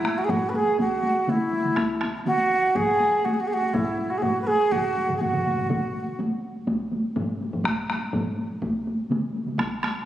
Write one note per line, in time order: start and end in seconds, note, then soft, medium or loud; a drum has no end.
0.00 0.19 E4 medium
0.00 taiko high medium
0.05 taiko rim medium
0.17 0.25 F#4 medium
0.17 taiko high soft
0.24 0.31 G#4 medium
0.29 0.50 F#4 medium
0.29 taiko low-mid medium
0.29 taiko high medium
0.49 0.57 B4 medium
0.54 0.79 G#4 medium
0.54 taiko high medium
0.79 1.31 F#4 medium
0.79 taiko loud
0.79 taiko high medium
0.91 taiko high soft
1.03 taiko high medium
1.16 taiko high soft
1.27 2.03 E4 medium
1.27 taiko mid medium
1.27 taiko high medium
1.41 taiko high soft
1.52 taiko high medium
1.65 taiko mid medium
1.65 taiko high medium
1.77 taiko rim medium
1.77 taiko loud
1.77 taiko high medium
1.91 taiko high soft
2.01 taiko rim medium
2.01 taiko high medium
2.25 2.77 F#4 medium
2.25 taiko mid medium
2.25 taiko high medium
2.39 taiko high soft
2.64 taiko high soft
2.75 3.26 G#4 loud
2.75 taiko medium
2.75 taiko low-mid medium
2.75 taiko high medium
2.88 taiko high soft
3.00 taiko high medium
3.13 taiko high soft
3.24 3.35 F#4 medium
3.24 taiko high medium
3.33 3.41 G#4 medium
3.38 3.49 F#4 medium
3.38 taiko high soft
3.47 3.54 G#4 medium
3.47 taiko high medium
3.53 3.68 F#4 medium
3.63 taiko high medium
3.68 3.75 F#4 medium
3.73 4.11 E4 medium
3.73 taiko loud
3.73 taiko low-mid medium
3.73 taiko high medium
3.99 taiko high medium
4.10 4.19 F#4 medium
4.10 taiko high soft
4.17 4.23 G#4 medium
4.22 4.41 F#4 medium
4.22 taiko low-mid medium
4.22 taiko high medium
4.36 taiko high soft
4.41 4.48 B4 medium
4.47 4.73 G#4 loud
4.47 taiko high medium
4.60 taiko high soft
4.71 5.14 F#4 medium
4.71 taiko loud
4.71 taiko low-mid medium
4.71 taiko mid medium
4.71 taiko high medium
4.85 taiko high soft
4.97 taiko high medium
5.09 taiko low-mid medium
5.09 taiko mid medium
5.09 taiko high soft
5.16 5.22 G#4 soft
5.20 6.18 F#4 medium
5.20 taiko low-mid medium
5.20 taiko mid medium
5.20 taiko high medium
5.33 taiko low-mid medium
5.33 taiko mid medium
5.33 taiko high soft
5.46 taiko low-mid medium
5.46 taiko mid medium
5.46 taiko high medium
5.58 taiko low-mid medium
5.58 taiko mid medium
5.58 taiko high medium
5.69 taiko medium
5.69 taiko low-mid medium
5.69 taiko mid loud
5.69 taiko high medium
5.83 taiko high soft
5.95 taiko high medium
6.08 taiko high soft
6.19 taiko high medium
6.32 taiko high soft
6.56 taiko high soft
6.67 taiko medium
6.67 taiko high medium
6.79 taiko high soft
6.92 taiko high medium
7.04 taiko high soft
7.16 taiko low-mid medium
7.16 taiko high medium
7.29 taiko high soft
7.41 taiko high medium
7.53 taiko low-mid medium
7.53 taiko high soft
7.64 taiko rim medium
7.64 taiko loud
7.64 taiko high medium
7.78 taiko high soft
7.90 taiko rim medium
7.90 taiko high medium
8.03 taiko high soft
8.13 taiko low-mid loud
8.13 taiko high medium
8.27 taiko high soft
8.38 taiko high soft
8.51 taiko high soft
8.62 taiko loud
8.62 taiko high medium
8.75 taiko high soft
8.87 taiko high medium
8.99 taiko high soft
9.11 taiko mid medium
9.11 taiko high medium
9.23 taiko high soft
9.35 taiko high medium
9.46 taiko mid medium
9.46 taiko high soft
9.58 taiko rim medium
9.58 taiko loud
9.58 taiko high medium
9.71 taiko high soft
9.83 taiko rim medium
9.83 taiko high soft
9.95 taiko high soft